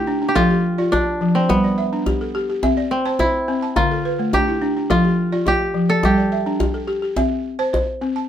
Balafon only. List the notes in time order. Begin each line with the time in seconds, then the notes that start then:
Already playing: E4
0.07 D4
0.22 D4
0.36 F3 A4
0.50 G4
0.78 F4 D5
0.92 F4
1.21 F3
1.36 D5
1.49 G3
1.64 D5
1.78 E5
1.93 D4
2.06 G4
2.21 A4
2.35 G4
2.50 G4
2.63 C4 E5
2.77 D5
3.05 C5 A5
3.19 C5
3.48 C4
3.62 A5
3.76 D3
3.91 A4
4.05 B4
4.19 A3
4.33 D4
4.48 E4
4.62 D4
4.77 D4
4.90 F3 A4
5.04 G4
5.32 F4 D5
5.46 F4
5.74 F3
5.89 D5
6.03 G3
6.18 D5
6.32 E5
6.46 D4
6.60 G4
6.74 A4
6.88 G4
7.02 G4
7.16 C4 E5
7.59 C5 A5
7.73 C5
8.01 C4
8.16 A5